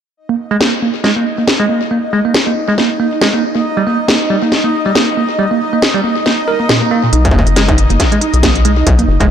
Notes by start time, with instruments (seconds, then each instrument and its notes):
0.17 synth texture D#4 D#5
0.29 tine electric piano A#3
0.51 tine electric piano G#3
0.61 tine electric piano A#3, snare
0.82 tine electric piano A#3
1.04 tine electric piano G#3, snare
1.16 tine electric piano A#3
1.38 tine electric piano A#3
1.48 snare
1.60 tine electric piano G#3
1.69 tine electric piano A#3
1.91 tine electric piano A#3
2.13 tine electric piano G#3
2.25 tine electric piano A#3
2.34 snare
2.47 tine electric piano A#3
2.68 tine electric piano G#3
2.78 tine electric piano A#3, snare
3.00 tine electric piano A#3
3.21 tine electric piano G#3, snare
3.34 tine electric piano A#3
3.55 tine electric piano A#3
3.77 tine electric piano G3
3.87 tine electric piano A#3
4.08 tine electric piano A#3, snare
4.30 tine electric piano G3
4.42 tine electric piano A#3
4.52 snare
4.64 tine electric piano A#3
4.86 tine electric piano G3
4.95 tine electric piano A#3, snare
5.17 tine electric piano A#3
5.39 tine electric piano G3
5.51 tine electric piano A#3
5.73 tine electric piano A#3
5.82 snare
5.95 tine electric piano G3
6.04 tine electric piano A#3
6.26 tine electric piano A#3, snare
6.48 tine electric piano A#4
6.60 tine electric piano A#3
6.69 tine electric piano A#2, snare
6.82 tine electric piano A#3
6.91 tine electric piano A#3
7.03 tine electric piano A#2
7.13 acid bass B1, tine electric piano D#4, closed hi-hat
7.25 kick, closed hi-hat
7.31 acid bass F#1, tine electric piano A#3, kick
7.39 kick
7.47 acid bass F#1, closed hi-hat
7.56 tine electric piano G#3, snare, closed hi-hat
7.68 tine electric piano D#4, kick, closed hi-hat
7.78 closed hi-hat
7.90 acid bass F#1, tine electric piano A#3, closed hi-hat
8.00 kick, snare, closed hi-hat
8.12 tine electric piano G#3, closed hi-hat
8.21 tine electric piano D#4, closed hi-hat
8.34 acid bass B1, closed hi-hat
8.43 tine electric piano A#3, kick, snare, closed hi-hat
8.55 closed hi-hat
8.65 tine electric piano G#3, closed hi-hat
8.77 tine electric piano D#4
8.87 acid bass B1, kick, closed hi-hat
8.99 tine electric piano A#3, closed hi-hat
9.08 acid bass F#1
9.21 acid bass F#1, tine electric piano G#3, kick, closed hi-hat